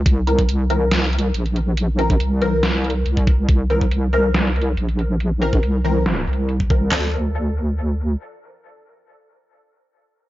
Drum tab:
HH |x---x-x-x---x---x---xx--x-x-x---|x---x-x-x---x---x---xx--x-x-x---|x---x-x-x---x---x---xx--x-x-x---|x---x-x-x---x---x---xx--x-x-x---|
CP |--------------------------------|--------------------------------|--------------------------------|--------------------------------|
SD |----------------o---------------|----------------o---------------|----------------o---------------|----------------o---------------|
BD |o-----o-------------------------|------o-------------------o-o---|o-----o-------------------------|------o-------------------o-o---|

HH |--------------------------------|--------------------------------|
CP |x-------------------------------|--------------------------------|
SD |o-------------------------------|--------------------------------|
BD |--------------------------------|--------------------------------|